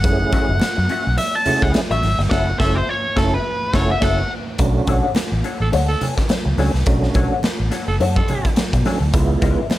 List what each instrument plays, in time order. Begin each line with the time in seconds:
Already playing: lead electric guitar F#5
0.04 fingered electric bass F#1, tonewheel organ G#3 C#4 E4 G#4, kick, closed hi-hat
0.10 tonewheel organ A3
0.32 clean electric guitar C#4 F#4 A4 E5, kick, closed hi-hat, muted conga
0.49 fingered electric bass F#1
0.60 muted fingered electric bass stroke, muted clean electric guitar stroke, snare, closed hi-hat, high conga
0.77 fingered electric bass F#2, muted clean electric guitar stroke
0.89 clean electric guitar C#4 F#4 A4 E5, closed hi-hat, muted conga
1.06 fingered electric bass B1, muted clean electric guitar stroke
1.18 lead electric guitar E5, muted clean electric guitar stroke, closed hi-hat, muted conga
1.35 lead electric guitar A5
1.45 tonewheel organ A3 C#4 E4 G#4, clean electric guitar C#4 F#4 A4 F#5, muted fingered electric bass stroke, closed hi-hat, muted conga, low conga
1.62 fingered electric bass C#2, lead electric guitar F#5, muted clean electric guitar stroke, kick, snare
1.74 muted clean electric guitar stroke, snare, closed hi-hat, high conga
1.90 fingered electric bass A1, clean electric guitar C#4 F#4 A4 E5, lead electric guitar E5, closed hi-hat
2.03 fingered electric bass G#1, muted clean electric guitar stroke, snare, open hi-hat, high conga
2.18 fingered electric bass G1, muted clean electric guitar stroke, snare, high conga
2.31 fingered electric bass F#1, tonewheel organ A3 C#4 E4, clean electric guitar C#4 F#4 A4 E5, tenor saxophone A4, lead electric guitar F#5, kick, snare, crash
2.59 fingered electric bass F#1, tonewheel organ A3 C#4 E4, clean electric guitar C#4 F#4 A4 E5, tenor saxophone A4, lead electric guitar E5, kick, snare
2.76 lead electric guitar C5
2.89 lead electric guitar C#5
3.16 fingered electric bass F#1, tonewheel organ A3 C#4 E4, clean electric guitar C#4 F#4 A4 E5, tenor saxophone A4, lead electric guitar A4, kick, snare
3.34 lead electric guitar B4
3.73 fingered electric bass F#1, tonewheel organ A3 C#4 E4, clean electric guitar C#4 F#4 A4 F#5, tenor saxophone A4, lead electric guitar C#5, kick, snare
3.91 lead electric guitar E5
4.01 fingered electric bass F#1, tonewheel organ A3 C#4 E4, clean electric guitar C#4 F#4 A4 E5, tenor saxophone A4, lead electric guitar F#5, kick, snare, crash
4.58 fingered electric bass B1, tonewheel organ A3 C#4 D4 F#4, kick, closed hi-hat
4.87 fingered electric bass B1, clean electric guitar D4 A4 C#5 F#5, kick, closed hi-hat, muted conga
5.15 muted clean electric guitar stroke, snare, closed hi-hat, high conga
5.32 fingered electric bass A1
5.44 clean electric guitar D4 A4 C#5 F#5, closed hi-hat
5.60 fingered electric bass A1, tenor saxophone A4, muted clean electric guitar stroke
5.72 fingered electric bass D2, clean electric guitar D4 A4 C#5 F#5, closed hi-hat, muted conga
5.88 tenor saxophone A4, muted clean electric guitar stroke
6.01 clean electric guitar D4 A4 C#5 G#5, closed hi-hat, muted conga, low conga
6.17 muted clean electric guitar stroke, kick, snare, closed hi-hat
6.29 muted clean electric guitar stroke, snare, closed hi-hat, high conga
6.45 fingered electric bass C#2, muted clean electric guitar stroke
6.58 fingered electric bass C#2, tonewheel organ A3 C#4 D4 F#4, clean electric guitar D4 A4 C#5 G#5, snare, open hi-hat, high conga
6.74 fingered electric bass C2, muted clean electric guitar stroke, snare
6.86 fingered electric bass B1, tonewheel organ A3 C#4 D4 F#4, kick, closed hi-hat
7.03 snare
7.14 fingered electric bass B1, clean electric guitar D4 A4 C#5 F#5, kick, closed hi-hat, muted conga
7.43 muted clean electric guitar stroke, snare, closed hi-hat, high conga
7.60 fingered electric bass A1
7.71 clean electric guitar D4 A4 C#5 F#5, snare, closed hi-hat, muted conga
7.88 fingered electric bass F#1, tenor saxophone A4, muted clean electric guitar stroke
8.00 fingered electric bass F#2, clean electric guitar D4 A4 C#5 F#5, closed hi-hat, muted conga
8.16 tenor saxophone A4, muted clean electric guitar stroke, kick
8.28 clean electric guitar D4 A4 C#5 G#5, closed hi-hat, muted conga, low conga
8.45 muted clean electric guitar stroke, kick, closed hi-hat
8.56 muted clean electric guitar stroke, snare, closed hi-hat, high conga
8.73 fingered electric bass B2, muted clean electric guitar stroke, kick, closed hi-hat
8.85 tonewheel organ A3 C#4 D4 F#4, clean electric guitar D4 A4 C#5 G#5, snare, open hi-hat, high conga
9.01 fingered electric bass D2, muted clean electric guitar stroke
9.13 fingered electric bass C#2, tonewheel organ G#3 B3 E4 F4, kick, closed hi-hat
9.42 fingered electric bass C#2, clean electric guitar C#4 F4 B4 E5, kick, closed hi-hat, muted conga
9.70 muted clean electric guitar stroke, snare, closed hi-hat, high conga